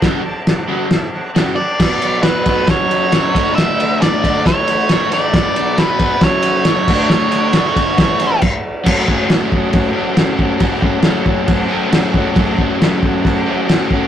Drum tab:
CC |x-x-x-x-|x-------|--------|-------x|
RD |--------|-xxxxxxx|xxxxxxxx|xxxxxxx-|
SD |o-o-o-o-|o-o-o-o-|o-o-o-o-|o-o-o-o-|
BD |o-------|o--oo--o|---oo---|o--oo--o|

CC |------x-|x-x-x-x-|x-x-x-x-|x-x-x-x-|
RD |-xxxxx--|--------|--------|--------|
SD |o-o-o---|--o---o-|--o---o-|--o---o-|
BD |---oo-o-|oo-oo--o|oo-oo--o|oo-oo--o|